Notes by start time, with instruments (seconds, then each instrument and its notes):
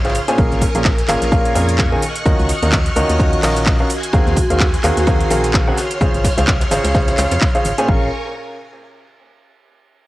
Already playing: fm bass G#1, string machine C#5 C6 F6
0.04 grand piano C#3 C#4 F4 G#4 C5 F5, snare, closed hi-hat, ride
0.09 snare, ride
0.15 open hi-hat, ride, shaker
0.28 grand piano A#2 C#4 F4 G#4 C5 G#5, closed hi-hat, shaker
0.38 fm bass A#1, grand piano A#2 C#4 F4 G#4 A#4 F5, string machine A#4 G#5 C#6, kick, ride, shaker
0.51 fm bass G#1, snare, shaker
0.61 kick, open hi-hat, ride, shaker
0.75 fm bass A#1, grand piano A#2 C#4 F4 G#4 A#4 F5, closed hi-hat, shaker
0.85 kick, snare, clap, ride, shaker
0.98 snare, closed hi-hat, shaker
1.08 fm bass G#1, grand piano A#2 C#4 F4 G#4 A#4 F5, clap, open hi-hat, ride, shaker
1.22 fm bass A#1, snare, closed hi-hat, shaker
1.32 grand piano A#2 C#4 F4 G#4 A#4 F5, kick, ride, shaker
1.45 closed hi-hat, ride
1.55 fm bass F2, grand piano A#2 C#4 F4 G#4 A#4 F5, open hi-hat, ride, shaker
1.69 closed hi-hat, shaker
1.78 kick, snare, clap, ride, shaker
1.92 grand piano D#3 C#4 F4 G#4 A#4 G#5, ride
2.02 string machine D#5 F6 F#6, open hi-hat, ride, shaker
2.15 closed hi-hat, ride, shaker
2.26 fm bass D#2, grand piano D#3 C#4 F4 F#4 A#4 D#5, kick, ride, shaker
2.39 fm bass C#2, shaker
2.49 open hi-hat, ride, shaker
2.62 fm bass D#2, grand piano D#3 C#4 F4 F#4 A#4 D#5, closed hi-hat, shaker
2.72 kick, snare, clap, ride, shaker
2.86 closed hi-hat, shaker
2.96 fm bass C#2, grand piano D#3 C#4 F4 F#4 A#4 D#5, open hi-hat, ride, shaker
3.09 fm bass D#2, snare, closed hi-hat, shaker
3.19 grand piano D#3 C#4 F4 F#4 A#4 D#5, kick, ride, shaker
3.33 closed hi-hat
3.43 fm bass A#1, grand piano D#3 C#4 F4 F#4 A#4 D#5, clap, open hi-hat, shaker
3.56 closed hi-hat, shaker
3.66 kick, snare, clap, ride, shaker
3.79 grand piano C#4 F4 F#4 A#4 F5, ride
3.90 string machine F#4 G#5 C6, open hi-hat, ride, shaker
4.03 closed hi-hat, shaker
4.13 fm bass D#2, grand piano D#3 C4 F#4 G#4 A#4 F5, kick, ride, shaker
4.27 fm bass D#2, snare, shaker
4.36 kick, open hi-hat, ride, shaker
4.50 fm bass D#2, grand piano D#3 C4 F#4 G#4 A#4 F5, closed hi-hat, shaker
4.60 kick, snare, clap, ride, shaker
4.74 snare, closed hi-hat, shaker
4.83 fm bass D#2, grand piano D#3 C4 F#4 G#4 A#4 F5, clap, open hi-hat, ride, shaker
4.97 fm bass D#2, snare, closed hi-hat, shaker
5.07 grand piano D#3 C4 F#4 G#4 A#4 F5, kick, ride, shaker
5.20 closed hi-hat, ride
5.30 fm bass A#1, grand piano D#3 C4 F#4 G#4 A#4 F5, open hi-hat, ride, shaker
5.44 closed hi-hat, shaker
5.53 kick, snare, clap, ride, shaker
5.67 grand piano C#3 C4 F#4 G#4 A#4 F#5, ride
5.77 string machine C#5 C6 F6, snare, open hi-hat, ride, shaker
5.90 closed hi-hat, ride, shaker
6.01 fm bass C#2, grand piano C#3 C#4 F4 G#4 C5 F5, kick, ride, shaker
6.14 fm bass G#1, closed hi-hat, shaker
6.24 kick, snare, open hi-hat, ride, shaker
6.37 fm bass C#2, grand piano C#3 C#4 F4 G#4 C5 F5, snare, closed hi-hat, ride, shaker
6.47 kick, snare, clap, ride, shaker
6.60 snare, closed hi-hat, ride, shaker
6.71 fm bass G#1, grand piano C#3 C#4 F4 G#4 C5 F5, snare, open hi-hat, ride, shaker
6.84 fm bass C#2, snare, closed hi-hat, ride, shaker
6.95 grand piano C#3 C#4 F4 G#4 C5 F5, kick, snare, ride, shaker
7.08 snare, closed hi-hat, ride, shaker
7.18 fm bass C#2, grand piano C#3 C#4 F4 G#4 C5 F5, snare, clap, open hi-hat, ride, shaker
7.31 fm bass F2, snare, closed hi-hat, ride, shaker
7.41 kick, clap, ride, shaker
7.55 grand piano C#3 C#4 F4 G#4 C5 F5, closed hi-hat, shaker
7.65 fm bass G#1, open hi-hat, ride, shaker
7.78 grand piano A#2 C#4 F4 G#4 C5 G#5, closed hi-hat, shaker
7.88 fm bass A#1, grand piano C#4 F4 G#4 A#4 F5, string machine A#4 G#5 C#6, kick